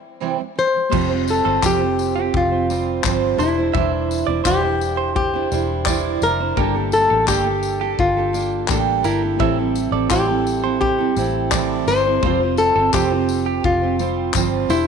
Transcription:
Already playing: C3 E3 G3
0.20 C3 E3 G3 C4 E4 C5
0.38 C3 E3 G3
0.56 C3 E3 G3 C5
0.74 C3 E3 G3
0.89 F1 F3 G3 C4 F4 C5, kick, crash
0.93 F4 C5
1.10 C4 F4 C5
1.28 A4, tambourine
1.45 G1 C4 F4 A4 C5
1.62 F1 F3 G3 C4 F4 G4 C5, kick, clap, tambourine
1.79 C4 F4 C5
1.99 tambourine
2.16 C4 F4 G4 C5
2.34 F1 F4, kick
2.51 C4 F4 C5
2.70 G3 C4 F4 C5, tambourine
3.04 G1 F3 G3 C4 F4 C5, kick, clap, tambourine
3.37 E1 G3 D4 E4 C5, tambourine
3.42 E4 C5
3.58 D4 E4 C5
3.74 E1 E3 G3 D4 E4 C5 E5, kick
4.11 tambourine
4.27 E1 D4 E4 C5 D5
4.44 E1 E3 G3 D4 E4 G4 C5, kick, clap, tambourine
4.63 D4 E4 C5
4.81 tambourine
4.97 C5
5.16 G4, kick
5.34 D4 E4 C5
5.51 E1 G3 D4 E4 C5, tambourine
5.86 E3 G3 D4 E4 C5 D5, kick, clap, tambourine
6.22 F1 G3 D4 E4 A#4 C5, tambourine
6.40 D4 E4 C5
6.56 G1 G3 A#3 D4 G4 A4 A#4, kick
6.60 A5
6.74 D4 G4 A4
6.92 A4, tambourine
7.10 A1 D4 G4 A4
7.28 G1 G3 A#3 D4 G4 A4, kick, clap, tambourine
7.45 D4 G4 A4
7.63 tambourine
7.81 D4 G4 A4
7.99 G1 F4, kick
8.17 D4 G4 A4
8.33 A#3 D4 G4 A4, tambourine
8.68 A1 G3 A#3 D4 G4 A4, kick, clap, tambourine
9.04 G1 A#3 D4 E4 G4 A4 A#4, tambourine
9.22 D4 G4 A4
9.37 A1 A2 E3 G3 C4 E4 A4 E5, kick
9.41 A4
9.58 G3 C4 E4 A4
9.76 tambourine
9.91 A1 G3 C4 E4 A4 D5
10.10 A1 A2 E3 G3 C4 E4 G4 A4 C5, kick, clap, tambourine
10.28 G3 C4 E4 A4
10.47 tambourine
10.63 G3 C4 E4 A4 C5
10.81 G4, kick
10.98 G3 C4 E4 A4
11.16 A1 G3 C4 E4 A4, tambourine
11.51 A2 E3 G3 C4 E4 A4 D5, kick, clap, tambourine
11.86 G1 G3 C4 C5, tambourine
11.91 E4 A4
12.05 G3 C4 E4 A4
12.21 F1 F3 G3 C4 F4 C5, kick
12.25 F4 C5
12.42 C4 F4 C5
12.57 A4, tambourine
12.75 G1 C4 F4 A4 C5
12.93 F1 F3 G3 C4 F4 G4 C5, kick, clap, tambourine
13.11 C4 F4 C5
13.29 tambourine
13.46 G4
13.64 F1 F4, kick
13.82 C4 F4 C5
13.99 G3 C4 F4 C5, tambourine
14.34 G1 F3 G3 C4 F4 C5, kick, clap, tambourine
14.69 E1 G3 D4 E4 C5, tambourine
14.73 C5

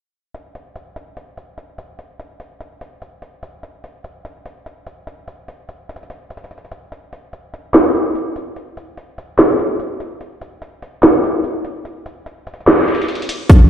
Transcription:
0.34 closed hi-hat
0.55 closed hi-hat
0.76 closed hi-hat
0.96 closed hi-hat
1.17 closed hi-hat
1.37 closed hi-hat
1.58 closed hi-hat
1.78 closed hi-hat
1.99 closed hi-hat
2.20 closed hi-hat
2.40 closed hi-hat
2.61 closed hi-hat
2.81 closed hi-hat
3.02 closed hi-hat
3.22 closed hi-hat
3.43 closed hi-hat
3.63 closed hi-hat
3.84 closed hi-hat
4.04 closed hi-hat
4.25 closed hi-hat
4.46 closed hi-hat
4.66 closed hi-hat
4.87 closed hi-hat
5.07 closed hi-hat
5.28 closed hi-hat
5.48 closed hi-hat
5.69 closed hi-hat
5.89 closed hi-hat
5.96 closed hi-hat
6.03 closed hi-hat
6.10 closed hi-hat
6.30 closed hi-hat
6.37 closed hi-hat
6.44 closed hi-hat
6.51 closed hi-hat
6.58 closed hi-hat
6.65 closed hi-hat
6.72 closed hi-hat
6.92 closed hi-hat
7.13 closed hi-hat
7.33 closed hi-hat
7.54 closed hi-hat
7.74 snare, clap, closed hi-hat
7.95 closed hi-hat
8.15 closed hi-hat
8.36 closed hi-hat
8.56 closed hi-hat
8.77 closed hi-hat
8.97 closed hi-hat
9.18 closed hi-hat
9.39 snare, clap, closed hi-hat
9.59 closed hi-hat
9.80 closed hi-hat
10.00 closed hi-hat
10.21 closed hi-hat
10.41 closed hi-hat
10.62 closed hi-hat
10.82 closed hi-hat
11.03 snare, clap, closed hi-hat
11.24 closed hi-hat
11.44 closed hi-hat
11.65 closed hi-hat
11.85 closed hi-hat
12.06 closed hi-hat
12.26 closed hi-hat
12.47 closed hi-hat
12.54 closed hi-hat
12.61 closed hi-hat
12.67 snare, clap, closed hi-hat
12.88 closed hi-hat
12.95 closed hi-hat
13.02 closed hi-hat
13.08 closed hi-hat
13.15 closed hi-hat
13.22 closed hi-hat
13.29 closed hi-hat
13.50 kick, closed hi-hat

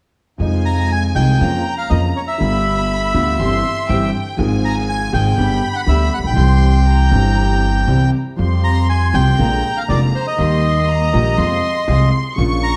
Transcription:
0.38 F2 C3 F3 G#3 D#4 F4 G#5
0.65 A#5
0.92 G#5
1.14 C2 C3 F3 G#3 D#4 F4 G5
1.40 F2 C#3 F3 A#3 C#4 F4 A#5
1.78 F5
1.90 F2 C#3 F3 A#3 C#4 F4 D#5
2.16 C#5
2.28 E5
2.38 G1 G2 D3 G3 B3 F4 G4 B5
2.42 F4
3.14 D2 D3 G3 B3 F4 G4
3.39 G1 G2 E3 G3 C4 E4 G4 C6
3.89 G1 G2 E3 G3 C4 E4 G4 G5
4.37 G#1 G#2 F3 G#3 C4 F4 G#4 G#5
4.65 A#5
4.89 G#5
5.12 G#1 G#2 F3 G#3 C4 F4 G#4 G5
5.37 G1 G2 D3 G3 B3 D4 G4 B5
5.73 F#5 G5
5.86 D2 D3 G3 B3 D4 G4 E5
6.14 F#5
6.18 A1
6.23 A#1 G5
6.30 B1
6.34 C2 C3 E3 G3 C4 E4 G4 C6
6.39 G4
6.87 A#5
7.09 G1 G2 E3 G3 C4 E4 G4
7.13 G4
7.87 C2 C3 E3 G3 C4 E4 G4
8.36 F2 F3 G3 C4 F4 G4 C6
8.64 A#5
8.90 G#5
9.13 C2 C3 F3 G3 C4 F4 G4 G5
9.38 A#1 A#2 D3 G#3 A#3 D4 F4 G#4 A#5
9.77 F5
9.88 F1 F2 D3 G#3 A#3 D4 F4 G#4 D5
10.15 C5
10.27 D#5
10.36 D#2 D#3 G3 A#3 D#4 G4
10.40 G4 C6
10.89 A#5
11.13 A#1 A#2 D#3 G3 A#3 D#4 G4
11.37 F2 C3 F3 G#3 C4 F4 G#4 C6
11.88 C2 C3 F3 G#3 C4 F4 G#4 C6
12.36 A#1 A#2 C#3 F3 A#3 C#4 F4 A#4 C#6
12.40 F4
12.63 A#5

